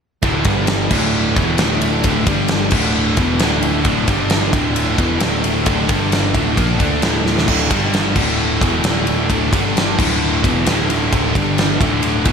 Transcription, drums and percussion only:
0.23 kick, ride
0.44 kick, ride
0.67 snare, ride
0.91 kick, crash
1.36 kick, ride
1.58 snare, ride
1.81 ride
2.04 kick, ride
2.27 kick, ride
2.48 snare, ride
2.71 kick, crash
3.17 kick, ride
3.39 snare, ride
3.62 ride
3.85 kick, ride
4.08 kick, ride
4.30 snare, ride
4.53 kick, ride
4.76 ride
4.98 kick, ride
5.20 snare, ride
5.44 ride
5.66 kick, ride
5.89 kick, ride
6.12 snare, ride
6.34 kick, ride
6.57 kick, ride
6.80 kick, ride
7.02 snare, ride
7.26 snare
7.38 snare
7.48 kick, crash
7.71 kick, ride
7.94 snare, ride
8.16 kick, crash
8.61 kick, ride
8.84 snare, ride
9.07 ride
9.30 kick, ride
9.53 kick, ride
9.77 snare, ride
9.99 kick, crash
10.44 kick, ride
10.66 snare, ride
10.90 ride
11.12 kick, ride
11.35 kick, ride
11.58 snare, ride
11.81 kick, ride
12.03 ride
12.25 kick, ride

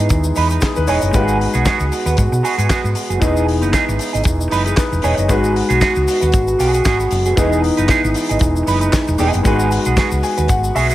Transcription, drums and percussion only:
0.09 kick, closed hi-hat, shaker
0.24 shaker
0.35 open hi-hat, shaker
0.50 closed hi-hat, shaker
0.61 kick, snare, clap, closed hi-hat, shaker
0.76 shaker
0.87 open hi-hat, shaker
1.02 closed hi-hat, shaker
1.13 kick, closed hi-hat, shaker
1.28 shaker
1.41 open hi-hat
1.54 closed hi-hat, shaker
1.65 kick, snare, clap, closed hi-hat, shaker
1.80 shaker
1.92 open hi-hat, shaker
2.06 closed hi-hat, shaker
2.17 kick, closed hi-hat, shaker
2.33 shaker
2.45 open hi-hat, shaker
2.59 closed hi-hat, shaker
2.70 kick, snare, clap, closed hi-hat, shaker
2.85 shaker
2.95 open hi-hat, shaker
3.10 closed hi-hat, shaker
3.22 kick, closed hi-hat, shaker
3.37 shaker
3.48 open hi-hat
3.62 closed hi-hat, shaker
3.73 kick, snare, clap, closed hi-hat, shaker
3.89 shaker
3.99 open hi-hat, shaker
4.14 closed hi-hat, shaker
4.24 kick, closed hi-hat, shaker
4.41 shaker
4.51 open hi-hat, shaker
4.66 closed hi-hat, shaker
4.77 kick, snare, clap, closed hi-hat, shaker
4.93 shaker
5.02 open hi-hat, shaker
5.18 closed hi-hat, shaker
5.29 kick, closed hi-hat, shaker
5.44 shaker
5.56 open hi-hat
5.70 closed hi-hat, shaker
5.81 kick, snare, clap, closed hi-hat, shaker
5.96 shaker
6.08 open hi-hat, shaker
6.22 closed hi-hat, shaker
6.32 kick, closed hi-hat, shaker
6.48 shaker
6.60 open hi-hat, shaker
6.74 closed hi-hat, shaker
6.85 kick, snare, clap, closed hi-hat, shaker
7.00 shaker
7.11 open hi-hat, shaker
7.26 closed hi-hat, shaker
7.37 kick, closed hi-hat, shaker
7.52 shaker
7.64 open hi-hat
7.77 closed hi-hat, shaker
7.89 kick, snare, clap, closed hi-hat, shaker
8.05 shaker
8.14 open hi-hat, shaker
8.29 closed hi-hat, shaker
8.39 kick, closed hi-hat, shaker
8.56 shaker
8.67 open hi-hat, shaker
8.81 closed hi-hat, shaker
8.93 kick, snare, clap, closed hi-hat, shaker
9.08 shaker
9.18 open hi-hat, shaker
9.33 closed hi-hat, shaker
9.45 kick, closed hi-hat, shaker
9.59 shaker
9.71 open hi-hat, shaker
9.85 closed hi-hat, shaker
9.97 kick, snare, clap, closed hi-hat, shaker
10.11 shaker
10.23 open hi-hat, shaker
10.38 closed hi-hat, shaker
10.48 kick, closed hi-hat, shaker
10.64 shaker
10.76 open hi-hat, shaker
10.90 closed hi-hat, shaker

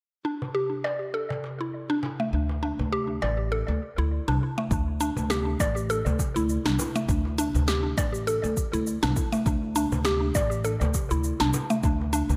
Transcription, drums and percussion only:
0.42 darbuka dum
0.85 darbuka tek
1.30 darbuka ka, darbuka tek, darbuka dum
1.44 darbuka tek
2.03 darbuka ka, darbuka tek, darbuka dum
2.49 darbuka ka
2.79 darbuka ka, darbuka dum
3.22 darbuka tek
3.69 darbuka tek
4.28 darbuka dum
4.58 darbuka tek
4.71 kick, cabasa
5.01 cabasa
5.17 darbuka dum, cabasa
5.30 snare, cabasa
5.60 kick, darbuka tek, cabasa
5.77 cabasa
5.90 cabasa
6.06 darbuka ka, darbuka tek, darbuka dum, cabasa
6.19 kick, darbuka tek, cabasa
6.36 cabasa
6.49 cabasa
6.66 snare, cabasa
6.79 darbuka ka, darbuka tek, darbuka dum, cabasa
6.96 cabasa
7.09 kick, cabasa
7.25 darbuka ka
7.39 cabasa
7.55 darbuka ka, darbuka dum, cabasa
7.68 snare, cabasa
7.98 kick, darbuka tek, cabasa
8.14 cabasa
8.28 cabasa
8.44 darbuka tek, cabasa
8.57 kick, cabasa
8.74 cabasa
8.87 cabasa
9.03 snare, darbuka dum, cabasa
9.16 kick, cabasa
9.33 darbuka tek, cabasa
9.46 kick, cabasa
9.76 cabasa
9.92 darbuka dum, cabasa
10.05 snare, cabasa
10.35 kick, darbuka tek, cabasa
10.51 cabasa
10.64 cabasa
10.81 darbuka ka, darbuka tek, darbuka dum, cabasa
10.94 kick, darbuka tek, cabasa
11.11 cabasa
11.24 cabasa
11.40 snare, cabasa
11.53 darbuka ka, darbuka tek, darbuka dum, cabasa
11.70 cabasa
11.83 kick, cabasa
12.02 darbuka ka
12.13 cabasa
12.30 darbuka ka, darbuka dum, cabasa

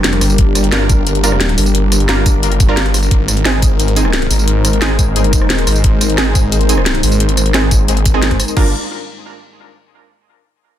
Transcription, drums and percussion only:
0.04 snare, closed hi-hat
0.13 cross-stick, closed hi-hat
0.21 cross-stick, open hi-hat, tambourine
0.30 tambourine
0.38 kick, closed hi-hat
0.55 cross-stick, closed hi-hat, tambourine
0.64 closed hi-hat
0.72 snare, closed hi-hat
0.89 kick, closed hi-hat, tambourine
1.07 closed hi-hat, tambourine
1.15 closed hi-hat
1.24 closed hi-hat, tambourine
1.32 cross-stick
1.41 snare, closed hi-hat
1.49 closed hi-hat
1.58 open hi-hat, tambourine
1.66 tambourine
1.75 closed hi-hat
1.92 cross-stick, closed hi-hat, tambourine
2.00 closed hi-hat
2.09 snare, closed hi-hat
2.26 kick, closed hi-hat, tambourine
2.43 closed hi-hat, tambourine
2.52 closed hi-hat
2.60 kick, closed hi-hat, tambourine
2.69 cross-stick
2.77 snare, closed hi-hat
2.86 cross-stick, closed hi-hat
2.94 cross-stick, open hi-hat, tambourine
3.03 tambourine
3.11 kick, closed hi-hat
3.28 cross-stick, closed hi-hat, tambourine
3.37 closed hi-hat
3.45 snare, closed hi-hat
3.62 kick, closed hi-hat, tambourine
3.80 closed hi-hat, tambourine
3.88 closed hi-hat
3.96 closed hi-hat, tambourine
4.05 cross-stick
4.13 snare, closed hi-hat
4.22 closed hi-hat
4.31 open hi-hat, tambourine
4.39 tambourine
4.48 closed hi-hat
4.65 cross-stick, closed hi-hat, tambourine
4.73 closed hi-hat
4.82 snare, closed hi-hat
4.99 kick, closed hi-hat, tambourine
5.16 closed hi-hat, tambourine
5.24 closed hi-hat
5.33 kick, closed hi-hat, tambourine
5.41 cross-stick
5.50 snare, closed hi-hat
5.58 cross-stick, closed hi-hat
5.67 cross-stick, open hi-hat, tambourine
5.76 tambourine
5.84 kick, closed hi-hat
6.01 cross-stick, closed hi-hat, tambourine
6.10 closed hi-hat
6.18 snare, closed hi-hat
6.35 kick, closed hi-hat, tambourine
6.52 closed hi-hat, tambourine
6.61 closed hi-hat
6.69 closed hi-hat, tambourine
6.78 cross-stick
6.86 snare, closed hi-hat
6.95 closed hi-hat
7.03 open hi-hat, tambourine
7.12 tambourine
7.20 closed hi-hat
7.29 closed hi-hat
7.37 cross-stick, closed hi-hat, tambourine
7.46 closed hi-hat
7.54 snare, closed hi-hat
7.71 kick, closed hi-hat, tambourine
7.88 closed hi-hat, tambourine
7.97 closed hi-hat
8.05 kick, closed hi-hat, tambourine
8.14 cross-stick
8.22 snare, closed hi-hat
8.31 kick, cross-stick, closed hi-hat
8.40 cross-stick, open hi-hat, tambourine
8.48 tambourine
8.57 kick, crash

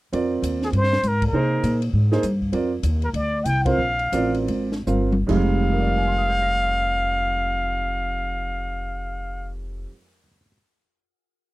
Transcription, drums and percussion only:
0.13 ride
0.43 hi-hat pedal, ride
0.62 snare
0.73 ride
0.83 snare
0.93 snare
1.03 hi-hat pedal, ride
1.22 kick, ride
1.64 hi-hat pedal, ride
1.82 ride
2.12 snare
2.23 hi-hat pedal, ride
2.42 kick
2.53 ride
2.83 hi-hat pedal, ride
3.02 ride
3.14 ride
3.45 hi-hat pedal, ride
3.66 kick, ride
3.99 ride
4.13 hi-hat pedal, ride
4.34 ride
4.48 ride
4.72 snare
4.87 hi-hat pedal, mid tom
5.12 mid tom
5.29 kick, crash

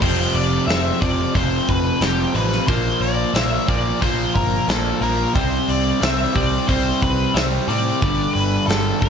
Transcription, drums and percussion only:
0.02 kick, crash
0.35 open hi-hat
0.69 snare, open hi-hat
1.02 kick, open hi-hat
1.35 kick, open hi-hat
1.69 kick, open hi-hat
2.01 snare, open hi-hat
2.35 open hi-hat
2.52 snare
2.68 kick, open hi-hat
3.02 open hi-hat
3.35 snare, open hi-hat
3.68 kick, open hi-hat
4.02 kick, open hi-hat
4.36 kick, open hi-hat
4.69 snare, open hi-hat
5.02 open hi-hat
5.35 kick, open hi-hat
5.69 open hi-hat
6.02 snare, open hi-hat
6.35 kick, open hi-hat
6.69 kick, open hi-hat
7.02 kick, open hi-hat
7.36 snare, open hi-hat
7.70 open hi-hat
8.02 kick, open hi-hat
8.36 open hi-hat
8.69 snare, open hi-hat
9.02 kick, open hi-hat

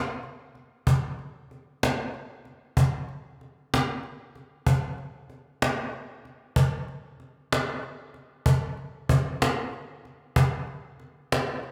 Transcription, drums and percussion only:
0.23 cajon slap
0.55 cajon slap
0.87 cajon bass
1.19 cajon slap
1.51 cajon slap
1.83 cajon slap
2.14 cajon slap
2.45 cajon slap
2.77 cajon bass
3.09 cajon slap
3.41 cajon slap
3.74 cajon slap
4.03 cajon slap
4.35 cajon slap
4.67 cajon bass
4.98 cajon slap
5.30 cajon slap
5.62 cajon slap
5.93 cajon slap
6.25 cajon slap
6.56 cajon bass
6.88 cajon slap
7.20 cajon slap
7.52 cajon slap
7.83 cajon slap
8.14 cajon slap
8.46 cajon bass
8.77 cajon slap
9.09 cajon bass
9.42 cajon slap
9.73 cajon slap
10.05 cajon slap
10.36 cajon bass
10.67 cajon slap
11.00 cajon slap
11.32 cajon slap
11.63 cajon slap

